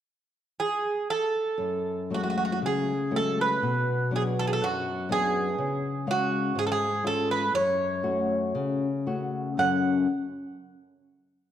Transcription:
0.60 1.10 G#4 medium
1.10 2.14 A4 medium
1.58 2.59 F#2 soft
2.10 2.92 F#3 soft
2.10 2.92 G#3 soft
2.10 2.93 A3 soft
2.10 2.20 F#4 medium
2.24 2.29 F#4 soft
2.30 2.36 F#4 soft
2.38 2.43 F#4 soft
2.45 2.51 F#4 soft
2.52 2.58 F#4 soft
2.62 3.60 C#3 soft
2.62 3.16 G#4 medium
3.11 3.52 F#3 soft
3.11 3.52 G#3 soft
3.11 3.52 A3 soft
3.16 3.40 A4 medium
3.41 4.10 B4 medium
3.62 4.58 B2 medium
4.11 4.90 F#3 soft
4.11 4.90 B3 soft
4.11 4.90 D4 soft
4.16 4.22 G#4 medium
4.39 4.45 A4 medium
4.47 4.51 G#4 medium
4.53 4.64 A4 medium
4.62 5.56 F#2 medium
4.62 5.08 F#4 medium
5.09 5.49 F#3 soft
5.09 5.49 B3 soft
5.09 5.50 D4 soft
5.09 6.05 G#4 medium
5.58 6.53 C#3 soft
6.07 6.85 G#3 soft
6.07 6.85 C#4 soft
6.07 6.59 F#4 medium
6.07 6.85 F5 soft
6.55 7.50 G#2 soft
6.55 6.64 G#4 medium
6.67 6.71 A4 medium
6.72 7.03 G#4 medium
7.03 7.43 G#3 soft
7.03 7.43 C#4 soft
7.03 7.43 F4 soft
7.03 7.29 A4 medium
7.31 7.55 B4 medium
7.53 8.52 F#2 soft
7.53 9.04 C#5 medium
8.03 8.86 A3 soft
8.03 8.86 C#4 soft
8.03 8.86 F#4 soft
8.55 9.55 C#3 soft
9.06 9.48 A3 soft
9.06 9.48 C#4 soft
9.06 9.48 F#4 soft
9.57 10.05 F#2 soft
9.57 10.05 C#3 soft
9.57 10.05 F#3 soft
9.57 10.06 C#4 soft
9.57 10.06 A4 soft
9.57 10.06 C#5 soft
9.57 10.06 F#5 medium

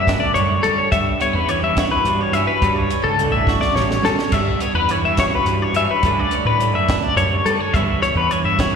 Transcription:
0.00 0.16 F#2 medium
0.00 0.36 G2 medium
0.00 0.93 D3 medium
0.00 0.95 A3 medium
0.00 0.66 C#4 soft
0.00 0.20 E5 medium
0.07 0.94 D4 medium
0.07 kick medium
0.07 snare loud
0.07 closed hi-hat medium
0.20 0.34 D5 medium
0.34 0.58 F#2 medium
0.34 0.91 G2 medium
0.34 0.63 C#5 medium
0.34 closed hi-hat medium
0.63 0.76 G3 medium
0.63 0.95 C#4 medium
0.63 0.78 A4 medium
0.63 closed hi-hat medium
0.78 0.91 C#5 medium
0.92 1.14 G2 medium
0.92 2.05 G2 medium
0.92 1.20 E5 medium
0.92 kick loud
0.92 closed hi-hat loud
1.20 1.33 B3 medium
1.20 1.35 C#5 medium
1.20 closed hi-hat medium
1.33 1.46 E2 medium
1.33 2.33 C#4 medium
1.33 1.49 B4 medium
1.48 3.19 E3 medium
1.48 1.63 C#5 medium
1.48 closed hi-hat medium
1.63 1.96 G2 medium
1.63 1.78 E5 medium
1.77 2.60 F#4 medium
1.77 1.91 C#5 medium
1.77 kick medium
1.77 snare loud
1.77 closed hi-hat medium
1.91 2.21 B4 medium
2.05 2.28 G2 loud
2.05 2.62 G2 medium
2.05 closed hi-hat medium
2.21 2.33 C#5 medium
2.33 2.45 G2 medium
2.33 2.67 C#4 medium
2.33 2.47 E5 medium
2.33 closed hi-hat medium
2.47 2.76 B4 medium
2.62 2.85 G2 loud
2.62 3.76 G2 medium
2.62 kick loud
2.62 closed hi-hat medium
2.76 3.05 C#5 medium
2.90 4.05 C#4 medium
2.90 closed hi-hat medium
3.04 3.32 C#2 medium
3.04 3.33 A4 medium
3.19 4.33 D3 medium
3.19 closed hi-hat medium
3.32 3.55 A1 medium
3.32 3.61 E5 medium
3.47 4.30 F#4 medium
3.47 kick medium
3.47 snare medium
3.61 3.75 D5 medium
3.61 snare medium
3.75 3.98 A1 medium
3.75 4.31 G2 medium
3.75 4.04 C#5 medium
3.75 snare medium
3.91 snare medium
4.03 4.15 G3 medium
4.03 4.35 C#4 soft
4.03 4.19 A4 medium
4.03 snare medium
4.18 4.32 C#5 medium
4.18 snare medium
4.32 4.55 G2 medium
4.32 5.46 G2 medium
4.32 4.61 E5 medium
4.32 kick loud
4.32 closed hi-hat medium
4.32 crash medium
4.60 4.75 B3 medium
4.60 4.75 C#5 medium
4.60 closed hi-hat medium
4.74 4.86 E2 medium
4.74 5.75 C#4 soft
4.74 4.91 B4 medium
4.89 6.00 E3 medium
4.89 5.05 C#5 medium
4.89 closed hi-hat medium
5.04 5.37 G2 medium
5.04 5.19 E5 medium
5.17 6.01 F#4 medium
5.17 5.33 C#5 medium
5.17 kick medium
5.17 snare loud
5.17 closed hi-hat loud
5.35 5.62 B4 medium
5.45 5.68 G2 medium
5.45 6.03 G2 medium
5.45 closed hi-hat medium
5.62 5.76 C#5 medium
5.73 5.85 G2 medium
5.73 6.07 C#4 medium
5.73 5.90 E5 medium
5.73 closed hi-hat medium
5.91 6.19 B4 medium
6.03 6.26 G2 medium
6.03 7.17 G2 medium
6.03 6.61 D3 medium
6.03 7.77 A3 medium
6.03 kick loud
6.03 closed hi-hat medium
6.07 6.34 C#4 medium
6.07 6.89 D4 medium
6.19 6.46 D5 medium
6.31 7.47 C#4 medium
6.31 closed hi-hat medium
6.45 6.74 A2 medium
6.45 6.75 B4 medium
6.60 7.75 D3 medium
6.60 closed hi-hat medium
6.74 6.96 F#2 medium
6.74 7.03 E5 medium
6.89 7.75 D4 medium
6.89 kick medium
6.89 snare loud
6.89 closed hi-hat medium
7.03 7.17 D5 medium
7.16 7.39 F#2 medium
7.16 7.75 G2 medium
7.16 7.45 C#5 medium
7.16 closed hi-hat medium
7.45 7.57 G3 medium
7.45 7.60 B3 medium
7.45 7.60 A4 medium
7.45 closed hi-hat medium
7.59 7.74 C#4 soft
7.59 7.74 C#5 medium
7.74 7.96 G2 medium
7.74 8.76 G2 medium
7.74 8.32 E3 medium
7.74 8.76 B3 medium
7.74 8.02 E5 medium
7.74 kick loud
7.74 closed hi-hat medium
7.78 8.04 C#4 medium
7.78 8.60 E4 medium
8.03 8.76 C#4 medium
8.03 8.16 C#5 medium
8.03 closed hi-hat medium
8.15 8.27 E2 medium
8.15 8.31 B4 medium
8.31 8.76 E3 medium
8.31 8.45 C#5 medium
8.31 closed hi-hat medium
8.44 8.76 G2 medium
8.44 8.60 E5 medium
8.59 8.76 F#4 medium
8.59 8.73 C#5 medium
8.59 kick medium
8.59 snare loud
8.59 closed hi-hat medium

